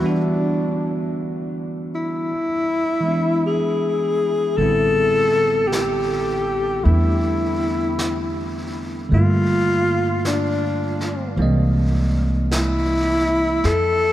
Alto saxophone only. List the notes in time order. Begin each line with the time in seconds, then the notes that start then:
0.08 D4
1.95 E4
3.46 G#4
4.57 A4
5.68 G4
6.84 E4
9.14 F4
10.27 D4
12.52 E4
13.66 A4